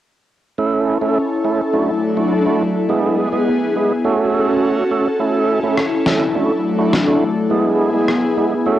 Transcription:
0.58 A3 C#4 E4 A4
1.01 A3 C#4 E4 A4
1.45 A3 C#4 E4 A4
1.73 F#3 A3 D4 E4 F#4
2.17 A3 D4 E4 F#4
2.46 A3 D4 E4 F#4
2.89 G#3 B3 E4 G#4
3.32 G#3 B3 E4 G#4
3.75 G#3 B3 E4 G#4
4.04 A3 C#4 F#4 A4
4.91 A3 C#4 F#4 A4
5.20 A3 C#4 E4 A4
5.63 A3 C#4 E4 A4
5.77 cross-stick
6.06 A3 C#4 E4 A4, snare
6.35 F#3 A3 D4 E4 F#4
6.78 A3 D4 E4 F#4
6.93 cross-stick, snare
7.07 A3 D4 E4 F#4
7.50 G#3 B3 E4 G#4
7.94 G#3 B3 E4 G#4
8.08 cross-stick
8.37 G#3 B3 E4 G#4
8.66 A3 C#4 F#4 A4

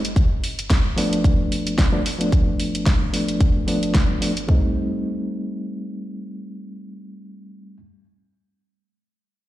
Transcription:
0.05 closed hi-hat
0.16 kick, closed hi-hat
0.44 open hi-hat
0.59 closed hi-hat
0.70 kick, snare, closed hi-hat
0.96 F3 A3 B3 D4, open hi-hat
1.13 closed hi-hat
1.24 kick, closed hi-hat
1.52 open hi-hat
1.67 closed hi-hat
1.78 kick, snare, closed hi-hat
1.92 F3 A3 B3 D4
2.06 open hi-hat
2.19 F3 A3 B3 D4, closed hi-hat
2.32 kick, closed hi-hat
2.60 open hi-hat
2.75 closed hi-hat
2.86 kick, snare, closed hi-hat
3.13 F3 A3 B3 D4, open hi-hat
3.28 closed hi-hat
3.40 kick, closed hi-hat
3.67 F3 A3 B3 D4, open hi-hat
3.83 closed hi-hat
3.94 kick, snare, closed hi-hat
4.21 F3 A3 B3 D4, open hi-hat
4.37 closed hi-hat
4.48 G3 A3 C4 D#4, kick

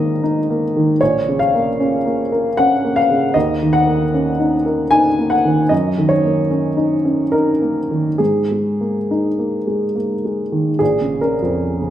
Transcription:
Already playing: G#2 D#3 A#3 D#4 A#4 D#5
0.23 D#4
0.50 A#3
0.76 D#3
1.01 A#1 C#5
1.29 C#3
1.39 F5
1.55 A#3
1.80 C#4
2.06 A#3
2.32 A#4
2.57 C#4 F#5
2.85 A#3
2.96 F5
3.11 C#3
3.34 D#2 D#5
3.63 D#3
3.73 F#5
3.87 A#3
4.14 C#4
4.39 D#4
4.66 A#4
4.91 D#4 G#5
5.19 A#3
5.30 F#5
5.45 D#3
5.69 F#2 D#5
5.98 D#3
6.09 C#5
6.24 A#3
6.51 C#4
6.77 D#4
7.05 C#4
7.32 D#4 A#4
7.62 A#3
7.91 D#3
8.18 G#2 G#4
8.51 G#3
8.81 A#3
9.11 D#4
9.39 A#3
9.67 G#3
9.96 A#3
10.25 G#3
10.52 D#3
10.79 A#1 G#4
11.01 C#3
11.21 C#4 A#4
11.42 F2
11.82 C#3

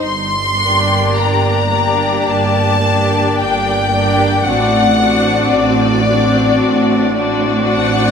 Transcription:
0.00 G1 G2 C6
0.59 A#3 D4 G4 D5
1.16 G1 G2 A#5
1.72 A#3 D4 G4 D5
2.27 G1 G2 A5
2.82 A#3 D4 G4 D5
3.38 G1 G2 G5
3.93 A#3 D4 G4 D5
4.44 A1 A2 C4 D4 F#4 D5 F#5
4.99 C4 D4 F#4 D5
5.52 A1 A2 D5
6.09 C4 D4 F#4 D5
6.63 A1 A2
7.17 C4 D4 F#4 D5
7.72 A1 A2 F#5

